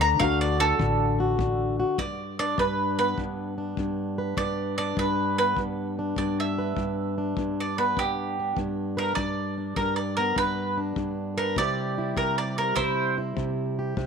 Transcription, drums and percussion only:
0.20 kick medium
0.79 kick medium
1.39 kick medium
1.98 kick medium
2.58 kick medium
3.18 kick medium
3.77 kick medium
4.37 kick medium
4.97 kick medium
5.57 kick medium
6.16 kick medium
6.77 kick medium
7.37 kick medium
7.97 kick medium
8.57 kick medium
9.17 kick medium
9.76 kick medium
10.36 kick medium
10.96 kick medium
11.56 kick medium
12.17 kick medium
12.77 kick medium
13.37 kick medium
13.97 kick medium

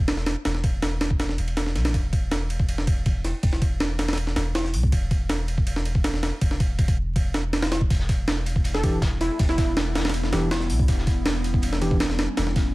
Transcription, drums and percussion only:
0.08 snare loud
0.08 ride medium
0.17 snare soft
0.26 snare loud
0.26 ride medium
0.45 snare loud
0.45 ride medium
0.55 snare soft
0.64 kick medium
0.64 ride medium
0.82 snare loud
0.82 ride medium
1.01 snare loud
1.01 ride medium
1.10 kick medium
1.20 snare loud
1.20 ride medium
1.29 snare soft
1.38 ride medium
1.48 ride soft
1.57 snare loud
1.57 ride medium
1.66 snare soft
1.76 snare soft
1.76 ride medium
1.85 snare loud
1.85 ride medium
1.94 kick loud
1.94 ride medium
2.13 kick medium
2.13 ride medium
2.31 snare loud
2.31 ride medium
2.50 ride medium
2.60 kick medium
2.69 ride medium
2.78 snare medium
2.87 kick medium
2.87 ride medium
3.06 kick medium
3.06 ride medium
3.24 snare soft
3.24 ride medium
3.43 kick loud
3.43 ride medium
3.53 snare soft
3.62 kick medium
3.62 ride medium
3.80 snare loud
3.80 ride medium
3.99 snare loud
3.99 ride medium
4.08 snare medium
4.08 ride medium
4.13 snare medium
4.13 ride medium
4.18 ride medium
4.27 snare soft
4.36 snare loud
4.36 ride medium
4.55 snare loud
4.55 ride medium
4.64 snare soft
4.74 open hi-hat medium
4.83 kick medium
4.92 kick loud
4.92 ride medium
5.11 kick medium
5.11 ride medium
5.30 snare loud
5.30 ride medium
5.48 ride medium
5.58 kick medium
5.67 ride medium
5.76 snare medium
5.85 ride medium
5.95 kick medium
6.04 snare loud
6.04 ride medium
6.14 snare soft
6.23 snare loud
6.23 ride medium
6.41 kick loud
6.41 ride medium
6.51 snare soft
6.60 kick loud
6.60 ride medium
6.79 kick medium
6.79 ride medium
6.88 kick medium
6.88 ride medium
7.16 kick medium
7.16 ride medium
7.34 snare loud
7.34 ride medium
7.53 snare loud
7.53 ride medium
7.62 snare loud
7.62 ride medium
7.72 snare loud
7.72 ride medium
7.81 kick medium
7.90 kick loud
7.90 closed hi-hat medium
7.90 ride medium
8.00 snare soft
8.09 kick medium
8.09 closed hi-hat medium
8.09 ride medium
8.28 snare loud
8.28 closed hi-hat medium
8.28 ride medium
8.46 closed hi-hat medium
8.46 ride medium
8.56 kick medium
8.64 closed hi-hat medium
8.64 ride medium
8.74 snare medium
8.84 kick medium
8.84 closed hi-hat medium
8.84 ride medium
9.02 kick medium
9.02 snare loud
9.02 closed hi-hat medium
9.02 ride medium
9.21 snare soft
9.21 closed hi-hat medium
9.21 ride medium
9.39 kick loud
9.39 closed hi-hat medium
9.39 ride medium
9.49 snare soft
9.58 kick medium
9.58 snare soft
9.58 closed hi-hat medium
9.58 ride medium
9.77 snare loud
9.77 closed hi-hat medium
9.77 ride medium
9.95 snare loud
9.95 snare medium
9.95 closed hi-hat medium
9.95 ride medium
10.00 snare medium
10.00 closed hi-hat medium
10.05 snare medium
10.05 snare loud
10.05 closed hi-hat medium
10.05 ride medium
10.09 snare medium
10.09 ride medium
10.14 closed hi-hat medium
10.14 ride medium
10.23 snare soft
10.33 snare loud
10.33 closed hi-hat medium
10.33 ride medium
10.51 snare loud
10.51 closed hi-hat medium
10.51 ride medium
10.61 snare soft
10.70 closed hi-hat medium
10.70 open hi-hat medium
10.79 kick medium
10.88 kick loud
10.88 closed hi-hat medium
10.88 ride medium
10.98 snare soft
11.07 kick medium
11.07 closed hi-hat medium
11.07 ride medium
11.26 snare loud
11.26 closed hi-hat medium
11.26 ride medium
11.44 closed hi-hat medium
11.44 ride medium
11.54 kick medium
11.62 closed hi-hat medium
11.62 ride medium
11.73 snare medium
11.82 closed hi-hat medium
11.82 ride medium
11.91 kick medium
12.00 snare loud
12.00 closed hi-hat medium
12.00 ride medium
12.10 snare soft
12.19 snare loud
12.19 closed hi-hat medium
12.19 ride medium
12.37 snare loud
12.37 closed hi-hat medium
12.37 ride medium
12.47 snare soft
12.56 kick loud
12.56 snare soft
12.56 closed hi-hat medium
12.56 ride medium

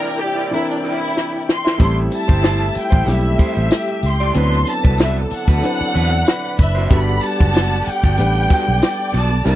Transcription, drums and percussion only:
1.17 snare medium
1.49 snare medium
1.67 snare medium
1.80 kick loud
1.80 closed hi-hat medium
1.80 tambourine soft
1.98 closed hi-hat medium
2.11 closed hi-hat medium
2.11 tambourine soft
2.28 kick medium
2.28 closed hi-hat soft
2.44 snare loud
2.44 tambourine medium
2.60 closed hi-hat medium
2.74 closed hi-hat medium
2.74 tambourine soft
2.92 kick medium
2.92 closed hi-hat medium
3.08 closed hi-hat medium
3.08 tambourine medium
3.24 closed hi-hat soft
3.39 kick medium
3.39 closed hi-hat medium
3.39 tambourine soft
3.56 closed hi-hat medium
3.71 snare loud
3.71 tambourine medium
3.88 closed hi-hat medium
4.03 open hi-hat medium
4.03 tambourine soft
4.20 snare soft
4.20 closed hi-hat soft
4.34 closed hi-hat medium
4.53 closed hi-hat medium
4.67 closed hi-hat medium
4.67 tambourine soft
4.84 kick medium
4.84 closed hi-hat soft
4.98 snare loud
4.98 tambourine medium
5.16 closed hi-hat medium
5.31 closed hi-hat medium
5.31 tambourine soft
5.48 kick medium
5.48 closed hi-hat medium
5.63 closed hi-hat medium
5.63 tambourine soft
5.80 closed hi-hat soft
5.95 closed hi-hat medium
5.95 tambourine soft
6.12 closed hi-hat medium
6.27 snare loud
6.27 tambourine medium
6.45 closed hi-hat medium
6.59 kick medium
6.59 open hi-hat medium
6.59 tambourine soft
6.77 snare soft
6.77 closed hi-hat soft
6.91 kick loud
6.91 closed hi-hat medium
7.09 closed hi-hat medium
7.22 closed hi-hat medium
7.22 tambourine soft
7.40 kick medium
7.40 closed hi-hat soft
7.54 snare loud
7.54 tambourine medium
7.72 closed hi-hat medium
7.86 closed hi-hat medium
7.86 tambourine soft
8.04 kick medium
8.04 closed hi-hat medium
8.17 closed hi-hat medium
8.17 tambourine soft
8.36 closed hi-hat medium
8.50 kick medium
8.50 closed hi-hat medium
8.50 tambourine soft
8.68 closed hi-hat medium
8.82 snare loud
8.82 tambourine medium
8.99 closed hi-hat medium
9.14 snare soft
9.14 open hi-hat medium
9.14 tambourine soft
9.31 closed hi-hat soft
9.46 closed hi-hat loud
9.46 tambourine soft

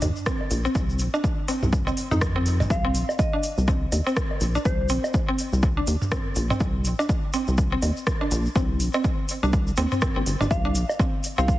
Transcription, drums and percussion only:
0.01 mid tom medium
0.01 open hi-hat medium
0.01 low woodblock medium
0.01 shaker medium
0.16 shaker soft
0.26 kick loud
0.26 cross-stick loud
0.26 shaker medium
0.41 low woodblock medium
0.51 open hi-hat medium
0.51 shaker medium
0.65 shaker soft
0.75 kick loud
0.75 shaker soft
0.90 shaker soft
0.99 open hi-hat medium
0.99 shaker medium
1.14 low woodblock medium
1.14 shaker soft
1.24 kick loud
1.24 shaker soft
1.48 open hi-hat medium
1.48 shaker loud
1.63 mid tom medium
1.63 shaker soft
1.73 kick loud
1.73 shaker medium
1.87 low woodblock medium
1.87 shaker soft
1.97 open hi-hat medium
1.97 shaker medium
2.11 mid tom medium
2.11 shaker soft
2.21 kick loud
2.21 cross-stick loud
2.21 shaker medium
2.46 open hi-hat medium
2.46 shaker medium
2.60 mid tom medium
2.60 low woodblock medium
2.60 shaker soft
2.70 kick loud
2.70 shaker medium
2.95 open hi-hat medium
2.95 shaker loud
3.09 low woodblock medium
3.09 shaker soft
3.19 kick loud
3.19 shaker medium
3.43 open hi-hat medium
3.43 shaker loud
3.58 shaker soft
3.68 kick loud
3.68 shaker medium
3.92 open hi-hat loud
3.92 low woodblock medium
3.92 shaker medium
4.07 shaker soft
4.17 kick loud
4.17 cross-stick loud
4.17 shaker medium
4.31 low woodblock medium
4.41 open hi-hat loud
4.41 shaker medium
4.55 shaker soft
4.65 kick loud
4.65 shaker soft
4.89 open hi-hat loud
4.89 shaker loud
5.04 low woodblock medium
5.04 shaker soft
5.14 kick loud
5.14 shaker medium
5.38 open hi-hat loud
5.38 shaker medium
5.53 shaker soft
5.63 kick loud
5.63 shaker soft
5.87 open hi-hat loud
5.87 shaker loud
6.02 mid tom medium
6.02 shaker soft
6.12 kick loud
6.12 cross-stick loud
6.12 shaker medium
6.35 open hi-hat loud
6.35 shaker medium
6.50 mid tom loud
6.50 low woodblock medium
6.50 shaker soft
6.60 kick loud
6.60 shaker medium
6.85 open hi-hat loud
6.85 shaker loud
6.99 low woodblock medium
6.99 shaker soft
7.09 kick loud
7.09 shaker medium
7.33 open hi-hat loud
7.33 shaker medium
7.47 shaker soft
7.58 kick loud
7.58 shaker medium
7.82 open hi-hat loud
7.82 low woodblock medium
7.82 shaker loud
7.97 shaker soft
8.07 kick loud
8.07 cross-stick loud
8.07 shaker medium
8.21 low woodblock medium
8.31 open hi-hat loud
8.31 shaker loud
8.45 shaker soft
8.56 kick loud
8.56 shaker medium
8.80 open hi-hat loud
8.80 shaker medium
8.93 low woodblock medium
8.93 shaker soft
9.04 kick loud
9.04 shaker medium
9.29 open hi-hat medium
9.29 shaker loud
9.43 shaker soft
9.53 kick loud
9.53 shaker soft
9.67 shaker soft
9.77 open hi-hat loud
9.77 shaker medium
9.91 mid tom medium
9.91 shaker soft
10.02 kick loud
10.02 cross-stick loud
10.02 shaker medium
10.26 open hi-hat loud
10.26 shaker loud
10.41 mid tom medium
10.41 low woodblock medium
10.41 shaker soft
10.51 kick loud
10.51 shaker medium
10.75 open hi-hat loud
10.75 shaker medium
10.89 low woodblock medium
10.89 shaker soft
10.99 kick loud
10.99 shaker medium
11.24 open hi-hat medium
11.24 shaker medium
11.39 shaker soft
11.48 kick loud
11.48 shaker soft

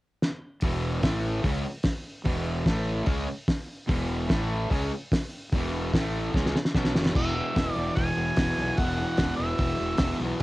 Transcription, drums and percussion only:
0.22 snare medium
0.61 kick loud
0.61 open hi-hat medium
1.03 kick loud
1.03 snare loud
1.03 open hi-hat medium
1.44 kick loud
1.44 open hi-hat medium
1.83 kick loud
1.83 snare loud
1.83 open hi-hat soft
2.25 kick loud
2.25 open hi-hat soft
2.66 kick medium
2.66 snare loud
2.66 open hi-hat soft
3.06 kick loud
3.06 open hi-hat soft
3.48 kick loud
3.48 snare loud
3.48 open hi-hat soft
3.89 kick loud
3.89 open hi-hat soft
4.29 kick loud
4.29 snare loud
4.29 open hi-hat soft
4.71 kick medium
4.71 open hi-hat soft
5.12 kick loud
5.12 snare loud
5.12 open hi-hat medium
5.52 kick loud
5.52 open hi-hat medium
5.94 kick loud
5.94 snare loud
5.94 open hi-hat soft
6.34 kick loud
6.34 snare medium
6.46 snare medium
6.56 snare medium
6.65 snare medium
6.75 kick loud
6.75 snare medium
6.85 snare medium
6.95 snare medium
7.06 snare medium
7.15 kick loud
7.15 crash loud
7.56 kick medium
7.56 snare loud
7.56 open hi-hat soft
7.96 kick loud
7.96 open hi-hat medium
8.36 kick loud
8.36 snare loud
8.36 open hi-hat medium
8.77 kick loud
8.77 open hi-hat medium
9.17 kick medium
9.17 snare medium
9.17 open hi-hat medium
9.58 kick loud
9.58 open hi-hat medium
9.98 kick loud
9.98 snare loud
9.98 open hi-hat soft

